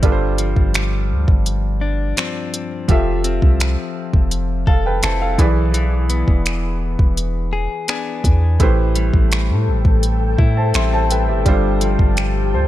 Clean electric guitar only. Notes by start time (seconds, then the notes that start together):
Already playing: G3 C4 E4
0.03 G2
0.39 F3
1.81 D4
2.17 F3 C4 D4
2.89 F3
3.24 C4
4.67 A4
5.03 C4 E4 A4
5.39 E3
5.74 E3
6.10 B3
7.53 G#4
7.89 B3 D4 G#4
8.60 A2
8.95 G3
10.39 E4
10.74 G3 C4 E4
11.46 G2
11.81 F3